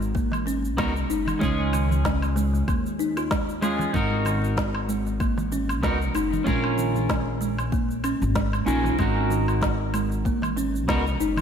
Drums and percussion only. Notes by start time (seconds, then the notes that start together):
0.00 darbuka ka, shaker
0.15 kick, shaker
0.32 darbuka tek, darbuka dum, low woodblock, shaker
0.46 darbuka ka, shaker
0.65 shaker
0.78 kick, snare, low woodblock, shaker
0.96 darbuka ka, shaker
1.10 shaker
1.27 darbuka dum, low woodblock, shaker
1.42 kick, shaker
1.73 low woodblock, shaker
1.90 darbuka ka, darbuka dum, shaker
2.04 kick, snare, darbuka tek, shaker
2.22 low woodblock, shaker
2.36 darbuka tek, shaker
2.54 darbuka ka, shaker
2.68 kick, low woodblock, shaker
2.86 shaker
3.00 shaker
3.17 low woodblock, shaker
3.31 kick, snare, shaker
3.49 shaker
3.63 low woodblock, shaker
3.79 darbuka ka, darbuka tek, darbuka dum, shaker
3.94 kick, shaker
4.26 low woodblock, shaker
4.43 darbuka ka, shaker
4.57 kick, snare, darbuka tek, shaker
4.75 low woodblock
4.89 shaker
5.07 darbuka ka, shaker
5.20 kick, low woodblock, shaker
5.38 darbuka tek, darbuka dum, shaker
5.52 darbuka ka, shaker
5.69 low woodblock, shaker
5.83 kick, snare, shaker
6.01 darbuka ka, shaker
6.15 low woodblock, shaker
6.33 darbuka dum, shaker
6.46 kick, shaker
6.64 low woodblock
6.79 shaker
6.96 darbuka ka, darbuka dum, shaker
7.09 kick, snare, darbuka tek, low woodblock, shaker
7.42 shaker
7.59 darbuka ka, low woodblock, shaker
7.72 kick, shaker
7.91 shaker
8.04 low woodblock, shaker
8.22 shaker
8.35 kick, snare, shaker
8.53 low woodblock, shaker
8.68 shaker
8.84 darbuka ka, darbuka tek, darbuka dum, shaker
8.99 kick, low woodblock, shaker
9.31 shaker
9.48 darbuka ka, low woodblock, shaker
9.61 kick, snare, darbuka tek, shaker
9.94 low woodblock, shaker
10.10 darbuka ka, shaker
10.25 kick, shaker
10.42 darbuka tek, darbuka dum, low woodblock, shaker
10.57 darbuka ka, shaker
10.76 shaker
10.89 kick, snare, low woodblock, shaker
11.05 darbuka ka, shaker
11.21 shaker
11.37 darbuka dum, low woodblock, shaker